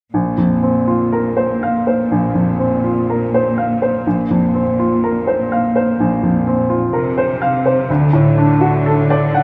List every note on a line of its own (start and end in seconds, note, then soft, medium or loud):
0.12 2.07 A#1 soft
0.12 6.89 A#2 soft
0.38 0.78 F2 soft
0.63 1.03 C4 soft
0.88 1.28 F4 soft
1.12 1.52 A#4 soft
1.37 1.76 C5 soft
1.63 2.02 F5 soft
1.87 2.26 C5 soft
2.12 4.01 A#1 soft
2.35 2.74 F2 soft
2.59 2.99 C4 soft
2.84 3.23 F4 soft
3.10 3.48 A#4 soft
3.34 3.72 C5 soft
3.58 3.96 F5 soft
3.82 4.20 C5 soft
4.07 5.95 A#1 soft
4.31 4.69 F2 soft
4.54 4.93 C4 soft
4.79 5.17 F4 soft
5.04 5.42 A#4 soft
5.27 5.65 C5 soft
5.52 5.90 F5 soft
5.76 6.14 C5 soft
6.00 7.86 A#1 soft
6.23 6.61 F2 soft
6.47 6.85 C4 soft
6.70 7.08 F4 soft
6.93 7.87 C3 soft
6.93 7.31 A#4 soft
7.18 7.56 C5 soft
7.42 7.80 F5 soft
7.66 7.89 C5 soft
7.89 9.43 D2 soft
7.89 9.43 D3 soft
8.13 8.51 A2 soft
8.38 8.76 D4 soft
8.61 8.99 F#4 soft
8.86 9.24 A4 soft
9.10 9.43 D5 soft
9.34 9.43 F#5 soft